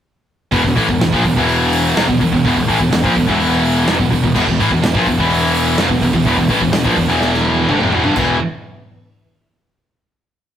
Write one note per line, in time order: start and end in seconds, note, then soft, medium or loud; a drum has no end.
0.52 0.63 E1 medium
0.52 0.63 E2 medium
0.52 0.64 B2 loud
0.52 kick loud
0.52 open hi-hat medium
0.64 0.75 E1 medium
0.64 0.76 E2 medium
0.64 0.75 B2 medium
0.64 kick medium
0.64 snare soft
0.76 0.87 A1 medium
0.76 0.87 A2 medium
0.76 0.87 E3 medium
0.76 kick medium
0.76 open hi-hat medium
0.89 0.99 E1 medium
0.89 1.00 E2 medium
0.89 1.00 B2 medium
0.89 kick medium
0.99 1.11 E1 medium
0.99 1.12 E2 medium
0.99 1.13 B2 medium
0.99 snare loud
0.99 open hi-hat medium
1.13 1.23 A#1 medium
1.13 1.24 A#2 medium
1.13 1.24 F3 medium
1.13 kick loud
1.24 1.35 E1 medium
1.24 1.36 E2 medium
1.24 1.36 B2 medium
1.24 kick medium
1.24 open hi-hat medium
1.36 1.92 E1 loud
1.36 1.95 E2 medium
1.36 1.96 B2 medium
1.36 1.96 E3 medium
1.36 kick medium
1.49 open hi-hat medium
1.73 open hi-hat medium
1.96 2.07 F1 medium
1.96 2.07 F2 medium
1.96 2.07 C3 loud
1.96 snare loud
1.96 open hi-hat medium
2.07 2.20 E1 medium
2.07 2.18 E2 medium
2.07 2.19 B2 medium
2.07 kick medium
2.19 2.32 E1 medium
2.19 2.31 E2 medium
2.19 2.31 B2 medium
2.19 kick medium
2.19 open hi-hat medium
2.32 2.44 E1 medium
2.32 2.44 E2 medium
2.32 2.44 B2 medium
2.32 kick medium
2.45 2.55 E1 loud
2.45 2.56 E2 medium
2.45 2.56 B2 loud
2.45 kick loud
2.45 open hi-hat medium
2.57 2.67 E1 medium
2.57 2.68 E2 medium
2.57 2.67 B2 medium
2.57 kick medium
2.67 2.80 A1 medium
2.67 2.79 A2 medium
2.67 2.79 E3 loud
2.67 kick medium
2.67 open hi-hat medium
2.79 2.91 E1 medium
2.79 2.89 E2 medium
2.79 2.89 B2 medium
2.79 kick medium
2.90 3.03 E1 medium
2.90 3.03 E2 medium
2.90 3.03 B2 medium
2.90 snare loud
2.90 open hi-hat medium
3.03 3.15 A#1 loud
3.03 3.14 A#2 medium
3.03 3.14 F3 medium
3.03 kick loud
3.16 3.27 E1 medium
3.16 3.25 E2 medium
3.16 3.26 B2 medium
3.16 kick medium
3.16 open hi-hat medium
3.27 3.84 E1 loud
3.27 3.85 E2 medium
3.27 3.86 B2 medium
3.27 3.86 E3 loud
3.27 kick medium
3.40 open hi-hat medium
3.64 open hi-hat medium
3.85 3.99 F1 medium
3.85 3.98 F2 loud
3.85 3.98 C3 loud
3.85 snare loud
3.85 open hi-hat medium
3.98 4.10 E1 medium
3.98 4.09 E2 medium
3.98 4.09 B2 medium
3.98 kick medium
4.10 4.22 E1 medium
4.10 4.22 E2 medium
4.10 4.22 B2 medium
4.10 kick medium
4.10 open hi-hat medium
4.23 4.34 E1 medium
4.23 4.34 E2 medium
4.23 4.34 B2 medium
4.23 kick medium
4.34 4.46 E1 loud
4.34 4.46 E2 medium
4.34 4.46 B2 loud
4.34 8.13 E3 medium
4.34 8.13 B3 medium
4.34 6.24 E4 medium
4.34 kick loud
4.34 crash loud
4.47 4.58 E1 medium
4.47 4.59 E2 medium
4.47 4.59 B2 medium
4.47 kick medium
4.47 snare soft
4.59 4.70 A1 loud
4.59 4.70 A2 medium
4.59 4.71 E3 loud
4.59 kick medium
4.59 open hi-hat medium
4.71 4.82 E1 medium
4.71 4.83 E2 medium
4.71 4.83 B2 medium
4.71 kick medium
4.83 4.94 E1 medium
4.83 4.95 E2 medium
4.83 4.95 B2 medium
4.83 snare loud
4.83 open hi-hat medium
4.95 5.06 A#1 medium
4.95 5.07 A#2 medium
4.95 5.07 F3 loud
4.95 kick loud
5.06 5.18 E1 medium
5.06 5.18 E2 medium
5.06 5.19 B2 medium
5.06 kick medium
5.06 open hi-hat medium
5.18 5.74 E1 medium
5.18 5.78 E2 medium
5.18 5.78 B2 medium
5.18 5.78 E3 loud
5.18 kick medium
5.30 open hi-hat medium
5.55 open hi-hat medium
5.78 5.89 F1 medium
5.78 5.90 F2 medium
5.78 5.90 C3 loud
5.78 snare loud
5.78 open hi-hat medium
5.89 6.01 E1 medium
5.89 6.02 E2 medium
5.89 6.02 B2 medium
5.89 kick medium
6.01 6.13 E1 medium
6.01 6.13 E2 medium
6.01 6.13 B2 medium
6.01 kick medium
6.01 open hi-hat medium
6.13 6.25 E1 medium
6.13 6.24 E2 medium
6.13 6.25 B2 medium
6.13 kick medium
6.24 6.36 E1 loud
6.24 6.37 E2 medium
6.24 6.37 B2 loud
6.24 8.14 D4 medium
6.24 kick loud
6.24 open hi-hat medium
6.37 6.48 E1 medium
6.37 6.50 E2 medium
6.37 6.49 B2 medium
6.37 kick medium
6.37 snare soft
6.48 6.61 A1 loud
6.48 6.61 A2 medium
6.48 6.61 E3 loud
6.48 kick medium
6.48 open hi-hat medium
6.61 6.72 E1 medium
6.61 6.70 E2 medium
6.61 6.71 B2 medium
6.61 kick medium
6.72 6.84 E1 medium
6.72 6.84 E2 medium
6.72 6.84 B2 medium
6.72 snare loud
6.72 open hi-hat medium
6.84 6.97 A#1 medium
6.84 6.96 A#2 medium
6.84 6.96 F3 medium
6.84 kick loud
6.96 7.08 E1 medium
6.96 7.07 E2 medium
6.96 7.07 B2 medium
6.96 kick medium
6.96 open hi-hat medium
7.08 7.65 E1 medium
7.08 7.68 E2 medium
7.08 7.68 B2 medium
7.08 7.68 E3 medium
7.21 snare medium
7.34 snare medium
7.45 high tom medium
7.56 high tom medium
7.68 7.80 G1 medium
7.68 7.80 G2 medium
7.68 7.80 D3 medium
7.68 mid tom medium
7.80 7.92 F1 medium
7.80 7.91 F2 medium
7.80 7.92 C3 medium
7.80 mid tom medium
7.92 8.04 E1 medium
7.92 8.03 E2 medium
7.92 8.04 B2 loud
7.92 floor tom loud
8.04 8.16 G1 medium
8.04 8.15 G2 medium
8.04 8.16 D3 loud
8.04 floor tom medium
8.15 8.39 E1 medium
8.15 8.35 E2 medium
8.15 8.36 B2 medium
8.15 8.36 E3 loud
8.15 8.40 E3 medium
8.15 8.39 B3 medium
8.15 8.39 E4 medium
8.15 kick loud
8.15 crash medium